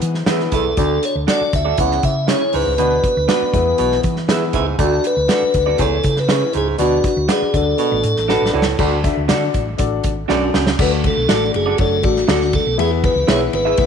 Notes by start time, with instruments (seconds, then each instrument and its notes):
Already playing: upright piano E3 B3 E4 G#4 B4
0.02 fingered electric bass E3, closed hi-hat
0.14 snare
0.26 fingered electric bass E3, upright piano B3 E4 G#4 B4, clean electric guitar E4 G#4 B4 E5, snare, closed hi-hat
0.40 snare
0.52 fingered electric bass B1, baritone saxophone E2, clean electric guitar E4 G#4 B4 E5, tonewheel organ A4, kick, closed hi-hat
0.77 baritone saxophone D2, fingered electric bass D2, upright piano D3 D4 F#4 A4 D5, kick, closed hi-hat
1.03 tonewheel organ C#5, closed hi-hat
1.15 fingered electric bass D2
1.27 clean electric guitar D4 F#4 A4 D5, upright piano D4 F#4 A4 D5, tonewheel organ D5, snare, closed hi-hat
1.41 muted fingered electric bass stroke
1.53 fingered electric bass D2, tonewheel organ E5, kick, closed hi-hat
1.65 clean electric guitar D4 F#4 A4 D5
1.78 fingered electric bass C#2, baritone saxophone E2, upright piano C#3 C#4 E4 G#4 C#5, tonewheel organ F#5, kick, closed hi-hat
1.91 snare
2.03 fingered electric bass C#3, tonewheel organ E5, kick, closed hi-hat
2.28 clean electric guitar C#4 E4 G#4 C#5, upright piano C#4 E4 G#4 C#5, tonewheel organ C#5, snare, closed hi-hat
2.53 fingered electric bass C#2, baritone saxophone G#2, tonewheel organ B4, open hi-hat
2.67 fingered electric bass C#2
2.77 fingered electric bass D2, baritone saxophone B2, upright piano D3 B3 D4 F#4 B4, closed hi-hat
3.04 kick, closed hi-hat
3.17 fingered electric bass D2
3.28 upright piano B3 D4 F#4 B4, clean electric guitar D4 F#4 B4 D5, snare, closed hi-hat
3.42 muted fingered electric bass stroke
3.53 fingered electric bass E2, upright piano E3 B3 E4 G#4 B4, kick, closed hi-hat
3.78 fingered electric bass B1, baritone saxophone B2, closed hi-hat
3.92 snare
4.03 fingered electric bass E3, kick, closed hi-hat
4.16 snare
4.28 upright piano B3 E4 G#4 B4, clean electric guitar E4 G#4 B4 E5, snare, closed hi-hat
4.53 fingered electric bass C#2, baritone saxophone G#2, clean electric guitar E4 G#4 B4 E5, tonewheel organ G#4, kick, closed hi-hat
4.78 baritone saxophone D2, fingered electric bass D2, upright piano D3 D4 F#4 A4 D5, tonewheel organ F#4, kick, closed hi-hat
5.04 tonewheel organ B4, closed hi-hat
5.17 fingered electric bass D2
5.28 clean electric guitar D4 F#4 A4 D5, upright piano D4 F#4 A4 D5, snare, closed hi-hat
5.42 muted fingered electric bass stroke
5.54 fingered electric bass D2, kick, closed hi-hat
5.66 clean electric guitar D4 F#4 A4 D5
5.78 fingered electric bass C#2, baritone saxophone E2, upright piano C#3 C#4 E4 C#5 G#5, tonewheel organ A4, kick, closed hi-hat
6.03 fingered electric bass C#3, kick, closed hi-hat
6.16 tonewheel organ B4, snare
6.28 clean electric guitar C#4 E4 G#4 C#5, upright piano C#4 E4 G#4 C#5, snare, closed hi-hat
6.53 fingered electric bass C#2, baritone saxophone G#2, closed hi-hat
6.57 tonewheel organ G#4
6.78 fingered electric bass D2, baritone saxophone B2, upright piano D3 D4 F#4 B4 D5, tonewheel organ F#4, closed hi-hat
7.04 tonewheel organ F#4, kick, closed hi-hat
7.17 fingered electric bass D2
7.28 clean electric guitar D4 F#4 B4 D5, upright piano D4 F#4 B4 D5, tonewheel organ G#4, snare, closed hi-hat
7.42 muted fingered electric bass stroke
7.53 fingered electric bass D2, upright piano D3 D4 F#4 A4 D5, tonewheel organ A4, kick, closed hi-hat
7.78 baritone saxophone B2, closed hi-hat
7.92 fingered electric bass A1
8.03 fingered electric bass A2, closed hi-hat
8.16 fingered electric bass A1, snare
8.28 upright piano D4 F#4 A4 B4, clean electric guitar D4 F#4 A4 D5, snare
8.42 fingered electric bass A1, snare
8.53 fingered electric bass C#2, baritone saxophone A2, clean electric guitar D4 F#4 A4 D5
8.62 snare
8.78 baritone saxophone D2, fingered electric bass D2, upright piano D3 D4 F#4 A4 D5, kick, crash
9.03 upright piano D4 F#4 A4 E5, kick, closed hi-hat
9.17 fingered electric bass D2
9.28 fingered electric bass D3, clean electric guitar D4 F#4 A4 D5, upright piano D4 F#4 A4 D5, snare, closed hi-hat
9.54 fingered electric bass A1, kick, closed hi-hat
9.78 fingered electric bass A1, upright piano D4 F#4 A4 D5, kick, closed hi-hat
10.04 fingered electric bass G#1, kick, closed hi-hat
10.28 fingered electric bass B1, baritone saxophone F#2, clean electric guitar D4 F#4 A4 D5, upright piano D4 F#4 A4 D5, snare
10.53 fingered electric bass C#2, baritone saxophone F#2, snare
10.67 snare
10.78 fingered electric bass D2, upright piano D3 A3 D4 F#4 A4 D5, tonewheel organ B4, kick, crash
11.04 tonewheel organ A4, kick, ride
11.17 fingered electric bass B1
11.28 fingered electric bass A1, upright piano A3 D4 F#4 A4 D5, clean electric guitar D4 F#4 A4 D5, snare, ride
11.54 fingered electric bass F#1, tonewheel organ G#4, ride
11.66 clean electric guitar D4 F#4 A4 D5
11.78 fingered electric bass F#1, upright piano A3 D4 F#4 A4 C#5, tonewheel organ A4, kick, ride
12.03 fingered electric bass A1, upright piano A3 D4 F#4 A4 D5, tonewheel organ F#4, kick, ride
12.16 snare
12.27 fingered electric bass D2, upright piano A3 D4 F#4 A4 D5, clean electric guitar D4 F#4 A4 D5, tonewheel organ F#4, snare, ride
12.41 snare
12.53 tonewheel organ A4, kick, ride
12.67 fingered electric bass B1
12.78 fingered electric bass E2, upright piano E3 B3 E4 G#4 B4 E5, tonewheel organ G#4, ride
13.04 tonewheel organ B4, kick, ride
13.16 fingered electric bass C#2
13.28 fingered electric bass B1, upright piano B3 E4 G#4 B4 E5, clean electric guitar E4 G#4 B4 E5, tonewheel organ C#5, snare, ride
13.53 fingered electric bass G#1, tonewheel organ B4, ride
13.65 clean electric guitar E4 G#4 B4 E5
13.77 fingered electric bass G#1, upright piano B3 E4 G#4 B4 E5, kick, ride